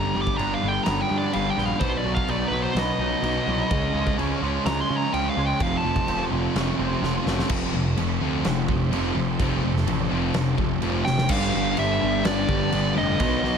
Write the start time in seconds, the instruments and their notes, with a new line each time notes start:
Already playing: distorted electric guitar G2 D3 G3, lead electric guitar A#5
0.15 picked electric bass G1, distorted electric guitar G2 D3 G3
0.22 lead electric guitar D6
0.27 kick
0.37 picked electric bass G1, distorted electric guitar G2 D3 G3, clean electric guitar D4, lead electric guitar A#5, crash
0.54 lead electric guitar F5
0.62 picked electric bass G1, distorted electric guitar G2 D3 G3
0.68 lead electric guitar G5
0.84 picked electric bass G1, distorted electric guitar G2 D3 G3, clean electric guitar B3, lead electric guitar A#5, snare, crash
1.01 lead electric guitar G5
1.09 distorted electric guitar G2 D3 G3, picked electric bass G2, clean electric guitar D4
1.18 lead electric guitar D5
1.33 picked electric bass G1, distorted electric guitar G2 D3 G3, lead electric guitar F5, crash
1.50 lead electric guitar G5
1.57 picked electric bass A#1, distorted electric guitar G2 D3 G3, clean electric guitar B3, snare
1.65 lead electric guitar F5
1.80 picked electric bass B1, distorted electric guitar B2 F#3 B3, lead electric guitar C5, kick, crash
1.97 lead electric guitar D5
2.05 picked electric bass B1, distorted electric guitar B2 F#3 B3
2.15 lead electric guitar F5, kick
2.28 picked electric bass B1, distorted electric guitar B2 F#3 B3, clean electric guitar D#4, lead electric guitar D5, crash
2.48 picked electric bass B1, lead electric guitar B4
2.53 distorted electric guitar B2 F#3 B3
2.63 lead electric guitar C5
2.75 picked electric bass B1, distorted electric guitar B2 F#3 B3, snare, crash
2.79 lead electric guitar D#5
2.98 picked electric bass B1, distorted electric guitar B2 F#3 B3, clean electric guitar D#4
3.22 picked electric bass B1, distorted electric guitar B2 F#3 B3, crash
3.47 picked electric bass C2, distorted electric guitar B2 F#3 B3
3.71 picked electric bass C#2, distorted electric guitar C#3 G#3 C#4, kick, crash
3.93 picked electric bass C#2, distorted electric guitar C#3 G#3 C#4, clean electric guitar F3
4.07 kick
4.17 picked electric bass C#2, distorted electric guitar C#3 G#3 C#4, crash
4.42 picked electric bass C#2, distorted electric guitar C#3 G#3 C#4, clean electric guitar F3
4.65 picked electric bass C#2, distorted electric guitar C#3 G#3 C#4, lead electric guitar A#5, snare, crash
4.81 lead electric guitar C6
4.90 distorted electric guitar C#3 G#3 C#4, picked electric bass C#3
4.97 lead electric guitar A#5
5.13 picked electric bass C#2, distorted electric guitar C#3 G#3 C#4, clean electric guitar F3, lead electric guitar G5, crash
5.30 lead electric guitar F5
5.37 picked electric bass C#2, distorted electric guitar C#3 G#3 C#4
5.46 lead electric guitar G5
5.60 picked electric bass F1, distorted electric guitar F2 C3 F3, lead electric guitar F5, kick, crash
5.77 lead electric guitar A5
5.84 picked electric bass F1, distorted electric guitar F2 C3 F3
5.96 kick
6.07 picked electric bass F1, distorted electric guitar F2 C3 F3, clean electric guitar C4, crash
6.31 picked electric bass F1, distorted electric guitar F2 C3 F3
6.55 picked electric bass F1, distorted electric guitar F2 C3 F3, clean electric guitar A3, snare, crash
6.79 picked electric bass F1, distorted electric guitar F2 C3 F3, clean electric guitar C4
7.01 picked electric bass F1, distorted electric guitar F2 C3 F3, snare
7.26 picked electric bass F1, distorted electric guitar F2 C3 F3, clean electric guitar A3, snare
7.39 snare
7.49 picked electric bass F1, distorted electric guitar F2 C3 F3, string section F3 C4 A4 C5, kick, crash
7.73 picked electric bass F1, distorted electric guitar F2 C3
7.97 picked electric bass F1, distorted electric guitar F2 C3, crash
8.21 picked electric bass D2, distorted electric guitar F2 C3 F3
8.44 picked electric bass F1, distorted electric guitar F2 C3, snare, crash
8.68 picked electric bass F1, distorted electric guitar F2 C3, kick
8.91 picked electric bass F1, distorted electric guitar F2 C3 F3, crash
9.14 picked electric bass F1, distorted electric guitar F2 C3
9.40 picked electric bass F1, distorted electric guitar F2 C3 F3, kick, crash
9.62 picked electric bass F1, distorted electric guitar F2 C3
9.77 snare
9.86 picked electric bass A1, distorted electric guitar F2 C3, crash
10.09 picked electric bass F1, distorted electric guitar F2 C3 F3
10.34 picked electric bass F1, distorted electric guitar F2 C3, snare, crash
10.57 picked electric bass F1, distorted electric guitar F2 C3, kick
10.82 picked electric bass F1, distorted electric guitar F2 C3 F3, crash
11.05 picked electric bass F1, distorted electric guitar F2 C3, lead electric guitar G5, snare
11.18 snare
11.28 picked electric bass G1, distorted electric guitar G2 D3 G3, string section D3 B3 G4 B4, overdriven electric guitar B3, lead electric guitar F5, kick, crash
11.33 overdriven electric guitar D4
11.54 picked electric bass G1, distorted electric guitar G2 D3 G3, snare
11.77 picked electric bass G1, distorted electric guitar G2 D3 G3, lead electric guitar E5, crash
12.01 picked electric bass G1, distorted electric guitar G2 D3 G3
12.24 picked electric bass G1, distorted electric guitar G2 D3 G3, lead electric guitar D5, snare, crash
12.48 picked electric bass G1, distorted electric guitar G2 D3 G3, kick
12.72 picked electric bass G1, distorted electric guitar G2 D3 G3, crash
12.95 picked electric bass F1, distorted electric guitar G2 D3 G3, overdriven electric guitar B3 D4, lead electric guitar D#5
13.20 picked electric bass B1, distorted electric guitar B2 F#3 B3, string section D#3 B3 F#4, overdriven electric guitar D#4, kick, crash
13.43 picked electric bass B1, distorted electric guitar B2 F#3 B3, snare